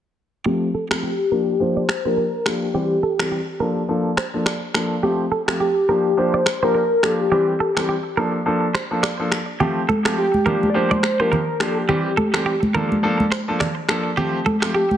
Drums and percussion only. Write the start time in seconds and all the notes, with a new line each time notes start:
0.91 finger snap, cross-stick
1.89 finger snap, cross-stick
2.46 finger snap, cross-stick
3.19 finger snap, cross-stick
4.17 finger snap, cross-stick
4.46 finger snap, cross-stick
4.74 finger snap, cross-stick
5.48 finger snap, cross-stick
6.46 finger snap, cross-stick
7.03 finger snap, cross-stick
7.77 finger snap, cross-stick
8.75 finger snap, cross-stick
9.03 finger snap, cross-stick
9.32 finger snap, cross-stick
9.61 low conga
9.89 high conga
10.05 finger snap, cross-stick
10.34 high conga
10.46 low conga
10.63 high conga
10.91 high conga
11.03 finger snap, cross-stick
11.33 low conga
11.60 finger snap, cross-stick
11.89 low conga
12.18 high conga
12.34 finger snap, cross-stick
12.63 high conga
12.75 low conga
12.92 high conga
13.20 high conga
13.32 finger snap, cross-stick
13.60 finger snap, cross-stick, low conga
13.89 finger snap, cross-stick
14.18 low conga
14.46 high conga
14.62 finger snap, cross-stick
14.91 high conga